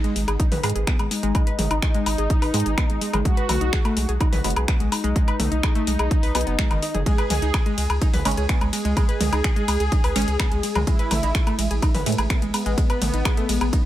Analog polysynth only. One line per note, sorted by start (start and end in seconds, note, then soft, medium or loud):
0.00 0.30 D#4 loud
1.11 3.16 D#4 loud
3.25 4.11 F#4 loud
4.92 6.97 D#4 loud
7.06 7.92 G#4 loud
8.73 10.78 G#4 loud
10.87 11.73 E4 loud
12.54 13.86 B3 loud